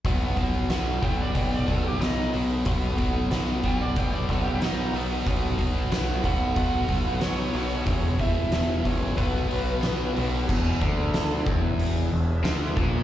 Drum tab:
CC |--------|--------|--------|--------|
HH |oooooooo|oooooooo|oooooooo|oooooooo|
SD |--o---o-|--o---o-|--o---o-|--o---o-|
BD |oo-ooo--|oo-ooo--|oo-ooo--|oo-oo---|

CC |x-------|
HH |--o-o-o-|
SD |--o---o-|
BD |oo-o---o|